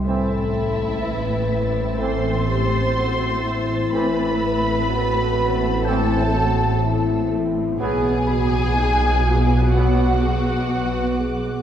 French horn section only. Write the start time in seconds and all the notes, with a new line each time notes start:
0.05 A4
1.03 B4
1.98 A4
2.47 G4
2.95 F#4
3.42 E4
4.90 F#4
5.87 E4
6.36 F#4
6.84 E4
7.81 G#4
8.29 F#4
8.77 D#4
9.25 F4
9.75 F#4
10.20 G#4
10.71 B4
11.19 G#4